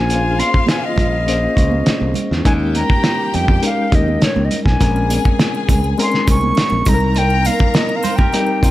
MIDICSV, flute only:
0, 0, Header, 1, 2, 480
1, 0, Start_track
1, 0, Tempo, 588813
1, 76, Time_signature, 4, 2, 24, 8
1, 7098, End_track
2, 0, Start_track
2, 0, Title_t, "Flute"
2, 0, Program_c, 0, 73
2, 0, Note_on_c, 0, 80, 93
2, 321, Note_on_c, 0, 84, 98
2, 333, Note_off_c, 0, 80, 0
2, 559, Note_off_c, 0, 84, 0
2, 565, Note_on_c, 0, 80, 89
2, 690, Note_on_c, 0, 75, 101
2, 702, Note_off_c, 0, 80, 0
2, 1884, Note_off_c, 0, 75, 0
2, 2006, Note_on_c, 0, 80, 103
2, 2059, Note_off_c, 0, 80, 0
2, 2251, Note_on_c, 0, 82, 97
2, 2732, Note_on_c, 0, 79, 84
2, 2744, Note_off_c, 0, 82, 0
2, 2965, Note_off_c, 0, 79, 0
2, 2978, Note_on_c, 0, 77, 86
2, 3220, Note_on_c, 0, 75, 85
2, 3232, Note_off_c, 0, 77, 0
2, 3454, Note_on_c, 0, 73, 84
2, 3467, Note_off_c, 0, 75, 0
2, 3628, Note_on_c, 0, 75, 72
2, 3640, Note_off_c, 0, 73, 0
2, 3773, Note_off_c, 0, 75, 0
2, 3786, Note_on_c, 0, 80, 76
2, 4219, Note_off_c, 0, 80, 0
2, 4910, Note_on_c, 0, 84, 86
2, 5118, Note_off_c, 0, 84, 0
2, 5140, Note_on_c, 0, 85, 105
2, 5614, Note_on_c, 0, 82, 97
2, 5626, Note_off_c, 0, 85, 0
2, 5852, Note_on_c, 0, 79, 112
2, 5864, Note_off_c, 0, 82, 0
2, 6084, Note_on_c, 0, 77, 93
2, 6097, Note_off_c, 0, 79, 0
2, 6328, Note_on_c, 0, 75, 89
2, 6340, Note_off_c, 0, 77, 0
2, 6489, Note_on_c, 0, 77, 89
2, 6501, Note_off_c, 0, 75, 0
2, 6652, Note_on_c, 0, 79, 101
2, 6664, Note_off_c, 0, 77, 0
2, 7098, Note_off_c, 0, 79, 0
2, 7098, End_track
0, 0, End_of_file